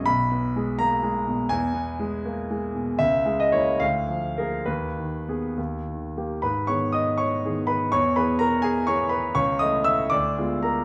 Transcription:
X:1
M:6/8
L:1/16
Q:3/8=79
K:G#m
V:1 name="Grand piano"
b6 a6 | g6 z6 | e3 d c2 ^e4 A2 | B6 z6 |
[Bb]2 [cc']2 [dd']2 [cc']4 [Bb]2 | [cc']2 [Bb]2 [Aa]2 [Gg]2 [cc']2 [Bb]2 | [cc']2 [dd']2 [ee']2 [=d=d']4 [Aa]2 |]
V:2 name="Grand piano" clef=bass
B,,,2 B,2 G,2 A,2 G,2 B,,2 | E,,2 B,2 G,2 A,2 G,2 B,,2 | C,,2 G,2 [A,E]2 =D,,2 ^E,2 [A,G]2 | D,,2 D,2 [B,G]2 D,,2 D,2 [A,=G]2 |
G,,2 [D,B,G]6 [D,B,G]4 | E,,2 [E,B,G]6 [E,B,G]4 | C,,2 [E,=A,E]4 =D,,2 [_A,B,=F]4 |]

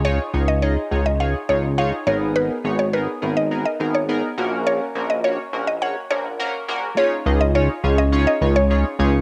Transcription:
X:1
M:4/4
L:1/16
Q:1/4=104
K:C#mix
V:1 name="Synth pluck"
c z2 d c z2 d e2 c z e z c z | B z2 c B z2 d z d z c2 z3 | c z2 d c z2 d f2 c z4 z | c z2 d c z2 d z d z c2 z3 |]
V:2 name="Analog polysynth"
[DEGc] z [DEGc] z [DEGd] z [DEGc] z [DEGc] z [DEGc] z [DEGc] z [B,DGA]2- | [B,DGA]2 [B,DGc] z [B,DGA] z [B,DGA] z [B,DGA] z [B,DGA] z [B,DGA] z [A,CFA]2- | [A,CFA]2 [A,CFA] z [A,CFc] z [A,CFA] z [A,CFc] z [A,CFA] z [A,CFA] z [A,CFA] z | [CDEGc] z [CDEGd] z [CDEGc] z [CDEGc] z [CDEGc] z [CDEGc] z [CDEGc] z [CDEGc] z |]
V:3 name="Analog synth bass" clef=bass
C,,2 C,,4 C,,4 C,,4 G,,,2- | G,,,2 G,,,4 G,,,4 G,,,4 A,,,2- | A,,,2 A,,,4 A,,,4 A,,,4 A,,,2 | z2 C,,4 C,,4 C,,4 C,,2 |]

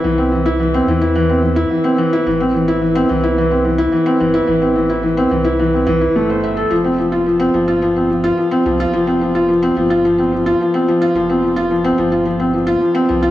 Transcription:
X:1
M:4/4
L:1/16
Q:1/4=108
K:F
V:1 name="Felt piano"
E, C E, E E, C E, E E, C E, E E, C E, E | E, C E, E E, C E, E E, C E, E E, C E, E | E, C E, E E, C E, E E, C E, E A, c e A | F, C F, F F, C F, F F, C F, F F, C F, F |
F, C F, F F, C F, F F, C F, F F, C F, F | F, C F, F F, C F, F F, C F, F F, C F, F |]
V:2 name="Sub bass" clef=bass
C,,6 E,,6 z4 | A,,,6 C,,6 z2 G,,,2 | A,,,6 C,,4 C,,2 G,,,4 | F,,,6 G,,,6 z2 C,,2 |
F,,,6 G,,,6 z4 | F,,,6 G,,,6 z2 C,,2 |]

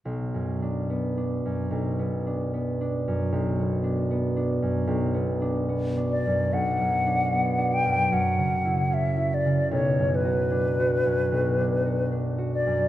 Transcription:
X:1
M:4/4
L:1/8
Q:1/4=75
K:Bm
V:1 name="Flute"
z8 | z6 z d | f3 g f2 e d | c B4- B z d |]
V:2 name="Harp"
(3B,,, F,, D (3B, D F,, (3B,,, B, D (3B, D F,, | (3B,,, B, D (3B, D F,, (3B,,, B, D (3B, D F,, | (3B,,, F,, D (3B, D F,, (3F,, C, E (3C E C, | (3B,,, F,, F (3D F F,, (3B,,, D F (3D F F,, |]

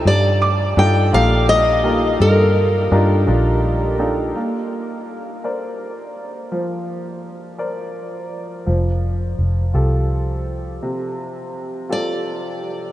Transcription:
X:1
M:6/8
L:1/8
Q:3/8=56
K:Bb
V:1 name="Felt piano"
z d'4- d' | z6 | z6 | z6 |
z6 | z6 |]
V:2 name="Steel-string acoustic guitar"
d2 g f e2 | B4 z2 | z6 | z6 |
z6 | z3 d3 |]
V:3 name="Upright piano"
G,2 [DEFGA] [B,EFGA]2 [B,EFGB] | G,2 [DEFGB] [DEFG]2 [DEFGA] | B,3 [Bcd]3 | F,3 [Bcd]3 |
F,3 [FGA]3 | C,3 [FGA]3 |]
V:4 name="Fingered electric bass" clef=bass
G,,2 G,, B,,,3 | G,,2 G,, B,,,3 | z6 | z6 |
F,,,2 F,,, C,,3 | z6 |]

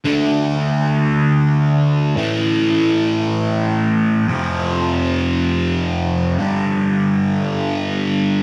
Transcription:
X:1
M:6/8
L:1/8
Q:3/8=57
K:Dm
V:1 name="Distorted electric guitar" clef=bass
[D,A,D]6 | [A,,E,A,]6 | [F,,C,F,]6 | [G,,D,G,]6 |]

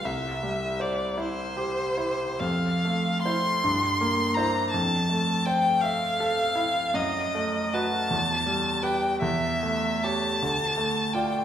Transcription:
X:1
M:6/8
L:1/8
Q:3/8=53
K:C
V:1 name="Violin"
e2 d c3 | f2 c'3 _b | a2 g f3 | ^d2 a3 g |
e2 a3 g |]
V:2 name="Grand piano"
C,, G, c E G E | F,, A, [Ec] G,, _B, [Ec] | F,, A, c e A E | ^F,, A, [^FB] E,, G, [GB] |
E,, A, [G^c] D,, A, [Fd] |]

